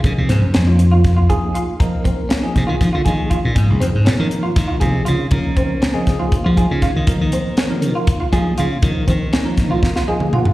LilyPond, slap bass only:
\new Staff \with { instrumentName = "Slap bass" } { \clef bass \time 7/8 \key bes \minor \tempo 4 = 120 des16 c16 aes,16 ges,16 f,4. r4 | r4. c16 ees16 f16 d16 ees8. bes,16 | aes,16 c,16 f,16 aes,16 bes,16 ees16 r8 ees8 c8 des8 | des4. r8. f8 des8 ees16~ |
ees16 ees4. r8. f8 des8 | ees8 ees4. r4. | }